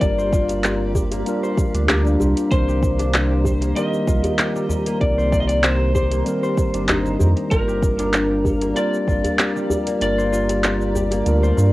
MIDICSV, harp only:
0, 0, Header, 1, 2, 480
1, 0, Start_track
1, 0, Key_signature, -3, "minor"
1, 0, Tempo, 625000
1, 11, Time_signature, 4, 2, 24, 8
1, 9007, End_track
2, 0, Start_track
2, 0, Title_t, "Harp"
2, 0, Program_c, 0, 46
2, 0, Note_on_c, 0, 55, 102
2, 0, Note_on_c, 0, 58, 74
2, 0, Note_on_c, 0, 60, 103
2, 0, Note_on_c, 0, 62, 102
2, 0, Note_on_c, 0, 65, 99
2, 0, Note_on_c, 0, 67, 81
2, 139, Note_on_c, 0, 72, 94
2, 247, Note_off_c, 0, 65, 0
2, 250, Note_on_c, 0, 65, 106
2, 487, Note_off_c, 0, 60, 0
2, 490, Note_on_c, 0, 60, 80
2, 609, Note_off_c, 0, 62, 0
2, 727, Note_off_c, 0, 67, 0
2, 730, Note_on_c, 0, 67, 75
2, 856, Note_off_c, 0, 58, 0
2, 859, Note_on_c, 0, 58, 74
2, 1096, Note_off_c, 0, 72, 0
2, 1099, Note_on_c, 0, 72, 95
2, 1339, Note_on_c, 0, 62, 70
2, 1447, Note_off_c, 0, 62, 0
2, 1450, Note_on_c, 0, 62, 102
2, 1688, Note_off_c, 0, 60, 0
2, 1691, Note_on_c, 0, 60, 79
2, 1927, Note_off_c, 0, 60, 0
2, 1930, Note_on_c, 0, 60, 99
2, 1969, Note_off_c, 0, 55, 0
2, 2055, Note_off_c, 0, 67, 0
2, 2058, Note_on_c, 0, 67, 101
2, 2187, Note_off_c, 0, 65, 0
2, 2294, Note_off_c, 0, 62, 0
2, 2297, Note_on_c, 0, 62, 98
2, 2536, Note_off_c, 0, 67, 0
2, 2539, Note_on_c, 0, 67, 80
2, 2619, Note_off_c, 0, 72, 0
2, 2776, Note_off_c, 0, 58, 0
2, 2779, Note_on_c, 0, 58, 69
2, 2887, Note_off_c, 0, 60, 0
2, 2890, Note_on_c, 0, 60, 101
2, 3131, Note_on_c, 0, 65, 104
2, 3368, Note_off_c, 0, 67, 0
2, 3371, Note_on_c, 0, 67, 80
2, 3501, Note_on_c, 0, 55, 96
2, 3737, Note_off_c, 0, 58, 0
2, 3740, Note_on_c, 0, 58, 80
2, 3978, Note_on_c, 0, 72, 104
2, 4087, Note_off_c, 0, 65, 0
2, 4090, Note_on_c, 0, 65, 99
2, 4328, Note_off_c, 0, 60, 0
2, 4332, Note_on_c, 0, 60, 79
2, 4447, Note_off_c, 0, 62, 0
2, 4568, Note_off_c, 0, 67, 0
2, 4571, Note_on_c, 0, 67, 74
2, 4696, Note_off_c, 0, 58, 0
2, 4699, Note_on_c, 0, 58, 71
2, 4936, Note_off_c, 0, 72, 0
2, 4939, Note_on_c, 0, 72, 104
2, 5177, Note_on_c, 0, 62, 75
2, 5290, Note_on_c, 0, 63, 98
2, 5336, Note_off_c, 0, 62, 0
2, 5527, Note_off_c, 0, 60, 0
2, 5530, Note_on_c, 0, 60, 81
2, 5767, Note_off_c, 0, 60, 0
2, 5770, Note_on_c, 0, 60, 107
2, 5809, Note_off_c, 0, 55, 0
2, 5894, Note_off_c, 0, 67, 0
2, 5897, Note_on_c, 0, 67, 104
2, 6028, Note_off_c, 0, 65, 0
2, 6138, Note_on_c, 0, 62, 102
2, 6184, Note_off_c, 0, 63, 0
2, 6375, Note_off_c, 0, 67, 0
2, 6378, Note_on_c, 0, 67, 79
2, 6459, Note_off_c, 0, 72, 0
2, 6614, Note_off_c, 0, 58, 0
2, 6617, Note_on_c, 0, 58, 75
2, 6726, Note_off_c, 0, 60, 0
2, 6729, Note_on_c, 0, 60, 101
2, 6969, Note_on_c, 0, 65, 102
2, 7207, Note_off_c, 0, 67, 0
2, 7210, Note_on_c, 0, 67, 80
2, 7338, Note_on_c, 0, 55, 108
2, 7575, Note_off_c, 0, 58, 0
2, 7578, Note_on_c, 0, 58, 77
2, 7818, Note_on_c, 0, 72, 95
2, 7925, Note_off_c, 0, 65, 0
2, 7929, Note_on_c, 0, 65, 104
2, 8166, Note_off_c, 0, 60, 0
2, 8169, Note_on_c, 0, 60, 80
2, 8287, Note_off_c, 0, 62, 0
2, 8407, Note_off_c, 0, 67, 0
2, 8410, Note_on_c, 0, 67, 74
2, 8534, Note_off_c, 0, 58, 0
2, 8537, Note_on_c, 0, 58, 73
2, 8776, Note_off_c, 0, 72, 0
2, 8779, Note_on_c, 0, 72, 99
2, 9007, Note_off_c, 0, 55, 0
2, 9007, Note_off_c, 0, 58, 0
2, 9007, Note_off_c, 0, 60, 0
2, 9007, Note_off_c, 0, 65, 0
2, 9007, Note_off_c, 0, 67, 0
2, 9007, Note_off_c, 0, 72, 0
2, 9007, End_track
0, 0, End_of_file